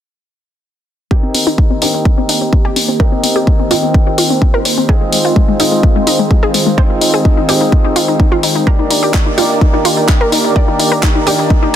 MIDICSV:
0, 0, Header, 1, 5, 480
1, 0, Start_track
1, 0, Key_signature, -3, "minor"
1, 0, Tempo, 472441
1, 1128, Time_signature, 4, 2, 24, 8
1, 11947, End_track
2, 0, Start_track
2, 0, Title_t, "Grand piano"
2, 0, Program_c, 0, 0
2, 1127, Note_on_c, 0, 63, 64
2, 1127, Note_on_c, 0, 67, 68
2, 1127, Note_on_c, 0, 70, 71
2, 1127, Note_on_c, 0, 75, 77
2, 1128, Note_on_c, 0, 60, 76
2, 1819, Note_off_c, 0, 63, 0
2, 1819, Note_off_c, 0, 67, 0
2, 1820, Note_off_c, 0, 60, 0
2, 1820, Note_off_c, 0, 70, 0
2, 1820, Note_off_c, 0, 75, 0
2, 1847, Note_on_c, 0, 60, 67
2, 1847, Note_on_c, 0, 63, 64
2, 1847, Note_on_c, 0, 67, 62
2, 1847, Note_on_c, 0, 70, 64
2, 1847, Note_on_c, 0, 75, 78
2, 3019, Note_off_c, 0, 60, 0
2, 3019, Note_off_c, 0, 63, 0
2, 3019, Note_off_c, 0, 67, 0
2, 3019, Note_off_c, 0, 70, 0
2, 3019, Note_off_c, 0, 75, 0
2, 3047, Note_on_c, 0, 60, 76
2, 3047, Note_on_c, 0, 63, 68
2, 3047, Note_on_c, 0, 67, 67
2, 3047, Note_on_c, 0, 70, 70
2, 3047, Note_on_c, 0, 75, 83
2, 3739, Note_off_c, 0, 60, 0
2, 3739, Note_off_c, 0, 63, 0
2, 3739, Note_off_c, 0, 67, 0
2, 3739, Note_off_c, 0, 70, 0
2, 3739, Note_off_c, 0, 75, 0
2, 3767, Note_on_c, 0, 60, 72
2, 3767, Note_on_c, 0, 63, 67
2, 3767, Note_on_c, 0, 67, 65
2, 3767, Note_on_c, 0, 70, 63
2, 3767, Note_on_c, 0, 75, 76
2, 4939, Note_off_c, 0, 60, 0
2, 4939, Note_off_c, 0, 63, 0
2, 4939, Note_off_c, 0, 67, 0
2, 4939, Note_off_c, 0, 70, 0
2, 4939, Note_off_c, 0, 75, 0
2, 4967, Note_on_c, 0, 60, 78
2, 4967, Note_on_c, 0, 63, 70
2, 4967, Note_on_c, 0, 65, 66
2, 4967, Note_on_c, 0, 68, 72
2, 4967, Note_on_c, 0, 75, 80
2, 5659, Note_off_c, 0, 60, 0
2, 5659, Note_off_c, 0, 63, 0
2, 5659, Note_off_c, 0, 65, 0
2, 5659, Note_off_c, 0, 68, 0
2, 5660, Note_off_c, 0, 75, 0
2, 5686, Note_on_c, 0, 68, 67
2, 5687, Note_on_c, 0, 60, 69
2, 5687, Note_on_c, 0, 63, 67
2, 5687, Note_on_c, 0, 65, 61
2, 5687, Note_on_c, 0, 75, 81
2, 6859, Note_off_c, 0, 60, 0
2, 6859, Note_off_c, 0, 63, 0
2, 6859, Note_off_c, 0, 65, 0
2, 6859, Note_off_c, 0, 68, 0
2, 6859, Note_off_c, 0, 75, 0
2, 6887, Note_on_c, 0, 60, 76
2, 6887, Note_on_c, 0, 63, 70
2, 6887, Note_on_c, 0, 65, 69
2, 6887, Note_on_c, 0, 68, 67
2, 6887, Note_on_c, 0, 75, 81
2, 7579, Note_off_c, 0, 60, 0
2, 7579, Note_off_c, 0, 63, 0
2, 7579, Note_off_c, 0, 75, 0
2, 7580, Note_off_c, 0, 65, 0
2, 7580, Note_off_c, 0, 68, 0
2, 7607, Note_on_c, 0, 60, 72
2, 7607, Note_on_c, 0, 63, 67
2, 7607, Note_on_c, 0, 65, 67
2, 7607, Note_on_c, 0, 68, 61
2, 7607, Note_on_c, 0, 75, 81
2, 8779, Note_off_c, 0, 60, 0
2, 8779, Note_off_c, 0, 63, 0
2, 8779, Note_off_c, 0, 65, 0
2, 8779, Note_off_c, 0, 68, 0
2, 8779, Note_off_c, 0, 75, 0
2, 8807, Note_on_c, 0, 63, 68
2, 8807, Note_on_c, 0, 74, 83
2, 8808, Note_on_c, 0, 58, 76
2, 8808, Note_on_c, 0, 62, 65
2, 8808, Note_on_c, 0, 67, 69
2, 9500, Note_off_c, 0, 58, 0
2, 9500, Note_off_c, 0, 62, 0
2, 9500, Note_off_c, 0, 63, 0
2, 9500, Note_off_c, 0, 67, 0
2, 9500, Note_off_c, 0, 74, 0
2, 9527, Note_on_c, 0, 58, 70
2, 9527, Note_on_c, 0, 62, 66
2, 9527, Note_on_c, 0, 63, 62
2, 9527, Note_on_c, 0, 67, 64
2, 9527, Note_on_c, 0, 74, 78
2, 10699, Note_off_c, 0, 58, 0
2, 10699, Note_off_c, 0, 62, 0
2, 10699, Note_off_c, 0, 63, 0
2, 10699, Note_off_c, 0, 67, 0
2, 10699, Note_off_c, 0, 74, 0
2, 10727, Note_on_c, 0, 58, 75
2, 10727, Note_on_c, 0, 62, 70
2, 10727, Note_on_c, 0, 63, 71
2, 10727, Note_on_c, 0, 67, 70
2, 10727, Note_on_c, 0, 74, 86
2, 11419, Note_off_c, 0, 58, 0
2, 11419, Note_off_c, 0, 62, 0
2, 11419, Note_off_c, 0, 63, 0
2, 11419, Note_off_c, 0, 67, 0
2, 11420, Note_off_c, 0, 74, 0
2, 11447, Note_on_c, 0, 62, 65
2, 11448, Note_on_c, 0, 58, 71
2, 11448, Note_on_c, 0, 63, 67
2, 11448, Note_on_c, 0, 67, 65
2, 11448, Note_on_c, 0, 74, 79
2, 11947, Note_off_c, 0, 58, 0
2, 11947, Note_off_c, 0, 62, 0
2, 11947, Note_off_c, 0, 63, 0
2, 11947, Note_off_c, 0, 67, 0
2, 11947, Note_off_c, 0, 74, 0
2, 11947, End_track
3, 0, Start_track
3, 0, Title_t, "Supersaw synth"
3, 0, Program_c, 1, 81
3, 1127, Note_on_c, 1, 51, 87
3, 1127, Note_on_c, 1, 58, 78
3, 1127, Note_on_c, 1, 60, 74
3, 1127, Note_on_c, 1, 67, 78
3, 1127, Note_on_c, 1, 72, 93
3, 4929, Note_off_c, 1, 58, 0
3, 4929, Note_off_c, 1, 67, 0
3, 4968, Note_on_c, 1, 56, 80
3, 4968, Note_on_c, 1, 65, 78
3, 8766, Note_off_c, 1, 60, 0
3, 8767, Note_off_c, 1, 72, 0
3, 8769, Note_off_c, 1, 65, 0
3, 8770, Note_off_c, 1, 56, 0
3, 8807, Note_on_c, 1, 74, 81
3, 8808, Note_on_c, 1, 58, 80
3, 8808, Note_on_c, 1, 67, 80
3, 8808, Note_on_c, 1, 70, 93
3, 11947, Note_off_c, 1, 51, 0
3, 11947, Note_off_c, 1, 58, 0
3, 11947, Note_off_c, 1, 67, 0
3, 11947, Note_off_c, 1, 70, 0
3, 11947, Note_off_c, 1, 74, 0
3, 11947, End_track
4, 0, Start_track
4, 0, Title_t, "Synth arpeggio sound"
4, 0, Program_c, 2, 84
4, 1127, Note_on_c, 2, 67, 96
4, 1215, Note_off_c, 2, 67, 0
4, 1252, Note_on_c, 2, 60, 59
4, 1334, Note_off_c, 2, 60, 0
4, 1367, Note_on_c, 2, 60, 62
4, 1455, Note_off_c, 2, 60, 0
4, 1492, Note_on_c, 2, 63, 86
4, 1574, Note_off_c, 2, 63, 0
4, 1607, Note_on_c, 2, 60, 58
4, 1695, Note_off_c, 2, 60, 0
4, 1731, Note_on_c, 2, 60, 61
4, 1813, Note_off_c, 2, 60, 0
4, 1848, Note_on_c, 2, 62, 84
4, 1936, Note_off_c, 2, 62, 0
4, 1972, Note_on_c, 2, 60, 61
4, 2054, Note_off_c, 2, 60, 0
4, 2088, Note_on_c, 2, 60, 65
4, 2176, Note_off_c, 2, 60, 0
4, 2212, Note_on_c, 2, 60, 63
4, 2294, Note_off_c, 2, 60, 0
4, 2327, Note_on_c, 2, 62, 92
4, 2416, Note_off_c, 2, 62, 0
4, 2451, Note_on_c, 2, 60, 63
4, 2533, Note_off_c, 2, 60, 0
4, 2567, Note_on_c, 2, 60, 60
4, 2656, Note_off_c, 2, 60, 0
4, 2691, Note_on_c, 2, 67, 91
4, 2774, Note_off_c, 2, 67, 0
4, 2808, Note_on_c, 2, 60, 64
4, 2896, Note_off_c, 2, 60, 0
4, 2931, Note_on_c, 2, 60, 61
4, 3014, Note_off_c, 2, 60, 0
4, 3047, Note_on_c, 2, 70, 95
4, 3135, Note_off_c, 2, 70, 0
4, 3171, Note_on_c, 2, 60, 62
4, 3254, Note_off_c, 2, 60, 0
4, 3287, Note_on_c, 2, 60, 61
4, 3375, Note_off_c, 2, 60, 0
4, 3411, Note_on_c, 2, 67, 87
4, 3493, Note_off_c, 2, 67, 0
4, 3527, Note_on_c, 2, 60, 58
4, 3616, Note_off_c, 2, 60, 0
4, 3651, Note_on_c, 2, 60, 61
4, 3733, Note_off_c, 2, 60, 0
4, 3766, Note_on_c, 2, 65, 93
4, 3855, Note_off_c, 2, 65, 0
4, 3892, Note_on_c, 2, 60, 63
4, 3974, Note_off_c, 2, 60, 0
4, 4007, Note_on_c, 2, 60, 60
4, 4095, Note_off_c, 2, 60, 0
4, 4131, Note_on_c, 2, 60, 64
4, 4214, Note_off_c, 2, 60, 0
4, 4247, Note_on_c, 2, 65, 94
4, 4335, Note_off_c, 2, 65, 0
4, 4372, Note_on_c, 2, 60, 65
4, 4454, Note_off_c, 2, 60, 0
4, 4487, Note_on_c, 2, 60, 62
4, 4575, Note_off_c, 2, 60, 0
4, 4611, Note_on_c, 2, 70, 91
4, 4694, Note_off_c, 2, 70, 0
4, 4727, Note_on_c, 2, 60, 62
4, 4815, Note_off_c, 2, 60, 0
4, 4852, Note_on_c, 2, 60, 64
4, 4934, Note_off_c, 2, 60, 0
4, 4967, Note_on_c, 2, 68, 100
4, 5055, Note_off_c, 2, 68, 0
4, 5092, Note_on_c, 2, 56, 58
4, 5174, Note_off_c, 2, 56, 0
4, 5207, Note_on_c, 2, 56, 61
4, 5295, Note_off_c, 2, 56, 0
4, 5331, Note_on_c, 2, 65, 89
4, 5414, Note_off_c, 2, 65, 0
4, 5447, Note_on_c, 2, 56, 61
4, 5535, Note_off_c, 2, 56, 0
4, 5571, Note_on_c, 2, 56, 66
4, 5653, Note_off_c, 2, 56, 0
4, 5687, Note_on_c, 2, 63, 93
4, 5776, Note_off_c, 2, 63, 0
4, 5811, Note_on_c, 2, 56, 62
4, 5894, Note_off_c, 2, 56, 0
4, 5927, Note_on_c, 2, 56, 60
4, 6015, Note_off_c, 2, 56, 0
4, 6051, Note_on_c, 2, 56, 62
4, 6133, Note_off_c, 2, 56, 0
4, 6167, Note_on_c, 2, 63, 94
4, 6255, Note_off_c, 2, 63, 0
4, 6290, Note_on_c, 2, 56, 63
4, 6373, Note_off_c, 2, 56, 0
4, 6407, Note_on_c, 2, 56, 59
4, 6495, Note_off_c, 2, 56, 0
4, 6530, Note_on_c, 2, 68, 90
4, 6613, Note_off_c, 2, 68, 0
4, 6646, Note_on_c, 2, 56, 67
4, 6735, Note_off_c, 2, 56, 0
4, 6771, Note_on_c, 2, 56, 63
4, 6854, Note_off_c, 2, 56, 0
4, 6886, Note_on_c, 2, 72, 100
4, 6975, Note_off_c, 2, 72, 0
4, 7011, Note_on_c, 2, 63, 62
4, 7094, Note_off_c, 2, 63, 0
4, 7127, Note_on_c, 2, 63, 60
4, 7215, Note_off_c, 2, 63, 0
4, 7251, Note_on_c, 2, 68, 87
4, 7334, Note_off_c, 2, 68, 0
4, 7367, Note_on_c, 2, 63, 62
4, 7455, Note_off_c, 2, 63, 0
4, 7491, Note_on_c, 2, 63, 63
4, 7573, Note_off_c, 2, 63, 0
4, 7606, Note_on_c, 2, 67, 88
4, 7695, Note_off_c, 2, 67, 0
4, 7730, Note_on_c, 2, 63, 61
4, 7813, Note_off_c, 2, 63, 0
4, 7846, Note_on_c, 2, 63, 61
4, 7935, Note_off_c, 2, 63, 0
4, 7971, Note_on_c, 2, 63, 64
4, 8053, Note_off_c, 2, 63, 0
4, 8087, Note_on_c, 2, 65, 92
4, 8175, Note_off_c, 2, 65, 0
4, 8212, Note_on_c, 2, 63, 64
4, 8294, Note_off_c, 2, 63, 0
4, 8327, Note_on_c, 2, 63, 63
4, 8415, Note_off_c, 2, 63, 0
4, 8451, Note_on_c, 2, 65, 87
4, 8533, Note_off_c, 2, 65, 0
4, 8567, Note_on_c, 2, 63, 63
4, 8656, Note_off_c, 2, 63, 0
4, 8691, Note_on_c, 2, 63, 64
4, 8774, Note_off_c, 2, 63, 0
4, 8808, Note_on_c, 2, 70, 98
4, 8896, Note_off_c, 2, 70, 0
4, 8932, Note_on_c, 2, 63, 58
4, 9014, Note_off_c, 2, 63, 0
4, 9047, Note_on_c, 2, 63, 62
4, 9135, Note_off_c, 2, 63, 0
4, 9171, Note_on_c, 2, 67, 86
4, 9254, Note_off_c, 2, 67, 0
4, 9287, Note_on_c, 2, 63, 61
4, 9376, Note_off_c, 2, 63, 0
4, 9411, Note_on_c, 2, 63, 64
4, 9494, Note_off_c, 2, 63, 0
4, 9527, Note_on_c, 2, 65, 95
4, 9615, Note_off_c, 2, 65, 0
4, 9651, Note_on_c, 2, 63, 61
4, 9733, Note_off_c, 2, 63, 0
4, 9767, Note_on_c, 2, 63, 63
4, 9855, Note_off_c, 2, 63, 0
4, 9891, Note_on_c, 2, 63, 66
4, 9974, Note_off_c, 2, 63, 0
4, 10007, Note_on_c, 2, 65, 89
4, 10095, Note_off_c, 2, 65, 0
4, 10130, Note_on_c, 2, 63, 64
4, 10213, Note_off_c, 2, 63, 0
4, 10246, Note_on_c, 2, 63, 64
4, 10335, Note_off_c, 2, 63, 0
4, 10370, Note_on_c, 2, 70, 90
4, 10453, Note_off_c, 2, 70, 0
4, 10486, Note_on_c, 2, 63, 65
4, 10575, Note_off_c, 2, 63, 0
4, 10611, Note_on_c, 2, 63, 63
4, 10694, Note_off_c, 2, 63, 0
4, 10727, Note_on_c, 2, 74, 96
4, 10815, Note_off_c, 2, 74, 0
4, 10851, Note_on_c, 2, 63, 62
4, 10934, Note_off_c, 2, 63, 0
4, 10967, Note_on_c, 2, 63, 61
4, 11056, Note_off_c, 2, 63, 0
4, 11091, Note_on_c, 2, 70, 86
4, 11173, Note_off_c, 2, 70, 0
4, 11207, Note_on_c, 2, 63, 63
4, 11295, Note_off_c, 2, 63, 0
4, 11331, Note_on_c, 2, 63, 64
4, 11413, Note_off_c, 2, 63, 0
4, 11446, Note_on_c, 2, 67, 94
4, 11535, Note_off_c, 2, 67, 0
4, 11571, Note_on_c, 2, 63, 64
4, 11654, Note_off_c, 2, 63, 0
4, 11687, Note_on_c, 2, 63, 61
4, 11775, Note_off_c, 2, 63, 0
4, 11811, Note_on_c, 2, 63, 64
4, 11893, Note_off_c, 2, 63, 0
4, 11947, End_track
5, 0, Start_track
5, 0, Title_t, "Drums"
5, 1127, Note_on_c, 9, 36, 106
5, 1229, Note_off_c, 9, 36, 0
5, 1367, Note_on_c, 9, 46, 93
5, 1468, Note_off_c, 9, 46, 0
5, 1607, Note_on_c, 9, 36, 98
5, 1709, Note_off_c, 9, 36, 0
5, 1847, Note_on_c, 9, 46, 88
5, 1949, Note_off_c, 9, 46, 0
5, 2087, Note_on_c, 9, 36, 113
5, 2189, Note_off_c, 9, 36, 0
5, 2327, Note_on_c, 9, 46, 93
5, 2428, Note_off_c, 9, 46, 0
5, 2567, Note_on_c, 9, 36, 101
5, 2669, Note_off_c, 9, 36, 0
5, 2807, Note_on_c, 9, 46, 85
5, 2909, Note_off_c, 9, 46, 0
5, 3047, Note_on_c, 9, 36, 116
5, 3149, Note_off_c, 9, 36, 0
5, 3287, Note_on_c, 9, 46, 100
5, 3389, Note_off_c, 9, 46, 0
5, 3527, Note_on_c, 9, 36, 95
5, 3629, Note_off_c, 9, 36, 0
5, 3767, Note_on_c, 9, 46, 89
5, 3869, Note_off_c, 9, 46, 0
5, 4007, Note_on_c, 9, 36, 111
5, 4109, Note_off_c, 9, 36, 0
5, 4247, Note_on_c, 9, 46, 95
5, 4349, Note_off_c, 9, 46, 0
5, 4487, Note_on_c, 9, 36, 98
5, 4589, Note_off_c, 9, 36, 0
5, 4727, Note_on_c, 9, 46, 88
5, 4828, Note_off_c, 9, 46, 0
5, 4967, Note_on_c, 9, 36, 119
5, 5069, Note_off_c, 9, 36, 0
5, 5207, Note_on_c, 9, 46, 100
5, 5309, Note_off_c, 9, 46, 0
5, 5447, Note_on_c, 9, 36, 104
5, 5549, Note_off_c, 9, 36, 0
5, 5687, Note_on_c, 9, 46, 92
5, 5788, Note_off_c, 9, 46, 0
5, 5927, Note_on_c, 9, 36, 123
5, 6029, Note_off_c, 9, 36, 0
5, 6167, Note_on_c, 9, 46, 102
5, 6269, Note_off_c, 9, 46, 0
5, 6407, Note_on_c, 9, 36, 98
5, 6509, Note_off_c, 9, 36, 0
5, 6647, Note_on_c, 9, 46, 96
5, 6749, Note_off_c, 9, 46, 0
5, 6887, Note_on_c, 9, 36, 122
5, 6989, Note_off_c, 9, 36, 0
5, 7127, Note_on_c, 9, 46, 99
5, 7228, Note_off_c, 9, 46, 0
5, 7367, Note_on_c, 9, 36, 100
5, 7469, Note_off_c, 9, 36, 0
5, 7607, Note_on_c, 9, 46, 86
5, 7709, Note_off_c, 9, 46, 0
5, 7847, Note_on_c, 9, 36, 116
5, 7949, Note_off_c, 9, 36, 0
5, 8087, Note_on_c, 9, 46, 106
5, 8189, Note_off_c, 9, 46, 0
5, 8328, Note_on_c, 9, 36, 99
5, 8429, Note_off_c, 9, 36, 0
5, 8567, Note_on_c, 9, 46, 91
5, 8669, Note_off_c, 9, 46, 0
5, 8808, Note_on_c, 9, 36, 117
5, 8909, Note_off_c, 9, 36, 0
5, 9048, Note_on_c, 9, 46, 101
5, 9149, Note_off_c, 9, 46, 0
5, 9287, Note_on_c, 9, 39, 109
5, 9288, Note_on_c, 9, 36, 93
5, 9388, Note_off_c, 9, 39, 0
5, 9389, Note_off_c, 9, 36, 0
5, 9528, Note_on_c, 9, 46, 88
5, 9629, Note_off_c, 9, 46, 0
5, 9768, Note_on_c, 9, 36, 107
5, 9869, Note_off_c, 9, 36, 0
5, 10008, Note_on_c, 9, 46, 92
5, 10109, Note_off_c, 9, 46, 0
5, 10247, Note_on_c, 9, 39, 100
5, 10248, Note_on_c, 9, 36, 99
5, 10348, Note_off_c, 9, 39, 0
5, 10349, Note_off_c, 9, 36, 0
5, 10488, Note_on_c, 9, 46, 89
5, 10590, Note_off_c, 9, 46, 0
5, 10728, Note_on_c, 9, 36, 110
5, 10829, Note_off_c, 9, 36, 0
5, 10968, Note_on_c, 9, 46, 90
5, 11069, Note_off_c, 9, 46, 0
5, 11207, Note_on_c, 9, 36, 90
5, 11207, Note_on_c, 9, 39, 108
5, 11308, Note_off_c, 9, 39, 0
5, 11309, Note_off_c, 9, 36, 0
5, 11448, Note_on_c, 9, 46, 83
5, 11550, Note_off_c, 9, 46, 0
5, 11688, Note_on_c, 9, 36, 107
5, 11789, Note_off_c, 9, 36, 0
5, 11947, End_track
0, 0, End_of_file